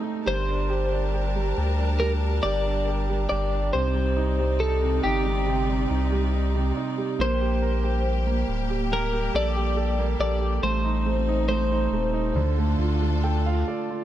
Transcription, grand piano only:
0.00 0.28 A3 medium
0.00 0.04 D#4 medium
0.00 0.25 D#4 soft
0.26 1.34 G3 medium
0.48 0.90 D4 soft
0.70 1.12 G4 medium
0.91 1.77 D4 medium
1.14 1.56 G4 medium
1.36 1.99 G3 medium
1.58 2.43 G4 medium
1.79 2.21 D4 medium
2.00 3.08 G3 medium
2.22 2.64 D4 soft
2.44 2.86 G4 medium
2.66 3.51 D4 medium
2.88 3.30 G4 medium
3.09 3.72 G3 medium
3.31 3.73 G4 medium
3.53 3.74 D4 medium
3.73 4.81 C3 medium
3.95 4.38 G3 soft
4.17 4.59 D#4 medium
4.39 5.24 G3 medium
4.60 5.03 D#4 medium
4.82 5.45 C3 medium
5.04 5.88 D#4 medium
5.26 5.67 G3 medium
5.46 6.53 C3 medium
5.69 6.11 G3 soft
5.90 6.32 D#4 medium
6.12 6.96 G3 medium
6.34 6.75 D#4 medium
6.55 7.17 C3 medium
6.77 7.18 D#4 medium
6.98 7.19 G3 soft
7.19 8.25 A#3 medium
7.41 7.82 G4 medium
7.62 9.30 A#4 medium
7.84 8.69 G4 medium
8.27 8.90 A#3 soft
8.70 9.11 G4 medium
8.91 9.97 A#3 medium
9.13 9.55 G4 medium
9.34 9.75 A4 medium
9.56 10.40 G4 medium
9.77 10.19 A4 medium
9.99 10.61 A#3 medium
10.21 10.62 A4 medium
10.41 10.62 G4 soft
10.62 11.05 A3 medium
10.85 11.27 D#4 soft
11.06 11.48 A3 medium
11.29 11.70 D#4 medium
11.50 11.91 A3 medium
11.71 12.12 D#4 medium
11.93 12.35 A3 medium
12.14 12.35 D#4 medium
12.36 14.04 D3 medium
12.58 13.01 A3 soft
12.79 13.45 F4 soft
13.02 14.04 A3 medium
13.24 13.66 A4 medium
13.24 13.45 G5 medium
13.46 13.89 F4 medium
13.46 13.67 F5 medium
13.68 14.04 A4 medium
13.68 14.04 D5 medium
13.90 14.04 F4 soft

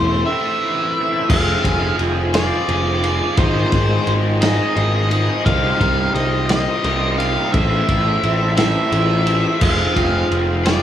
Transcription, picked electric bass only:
0.00 0.23 E1 medium
1.30 1.55 F1 loud
1.65 1.90 F1 medium
1.99 2.50 F1 medium
2.69 3.20 F1 medium
3.38 3.63 G#1 loud
3.73 3.98 G#1 medium
4.07 4.58 G#1 medium
4.76 5.28 G#1 medium
5.46 5.72 C2 loud
5.81 6.06 C2 medium
6.15 6.66 C2 medium
6.84 7.36 C2 medium
7.54 7.80 A1 loud
7.89 8.14 A1 medium
8.23 8.75 A1 medium
8.92 9.43 A1 medium
9.62 9.87 F1 loud
9.96 10.22 F1 loud
10.31 10.82 F1 medium

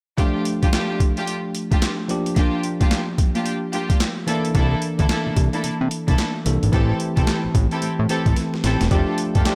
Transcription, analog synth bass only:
4.55 4.75 C2 loud
4.99 5.07 D2 medium
5.27 5.31 C2 soft
5.37 5.49 C2 medium
5.64 5.71 C3 medium
5.81 5.88 C3 medium
6.08 6.16 C2 medium
6.46 6.59 C2 medium
6.63 6.70 G#1 medium
6.73 6.93 A1 loud
7.17 7.25 C2 medium
7.45 7.49 A1 soft
7.55 7.67 A1 loud
7.82 7.89 A2 medium
7.99 8.07 A2 medium
8.26 8.34 A1 medium
8.64 8.77 A1 medium
8.81 8.89 E1 loud
8.91 9.04 F1 loud
9.35 9.43 G1 medium

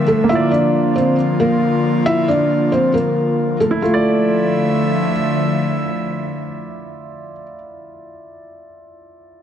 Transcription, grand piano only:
0.00 0.23 E4 medium
0.00 0.25 F4 medium
0.00 0.28 D5 medium
0.24 3.76 A#3 medium
0.30 3.78 F4 medium
0.35 3.81 D5 medium
3.71 7.31 E4 medium
3.82 7.43 F4 medium
3.94 7.54 D5 medium

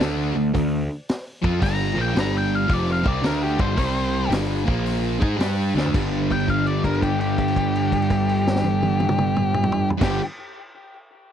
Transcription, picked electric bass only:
0.00 0.33 D2 loud
0.35 0.52 D2 medium
0.55 0.87 D2 medium
1.44 1.60 F2 loud
1.62 1.95 G1 medium
1.97 2.14 A#1 medium
2.15 2.65 G1 loud
2.69 3.03 F1 loud
3.05 3.22 C2 medium
3.23 3.56 D2 medium
3.59 3.76 G1 medium
3.77 4.27 C2 loud
4.30 4.64 G1 medium
4.68 5.18 A#1 medium
5.22 5.38 G#2 medium
5.39 5.72 G2 medium
5.75 5.91 D2 loud
5.94 9.88 G1 loud
10.01 10.19 G1 medium

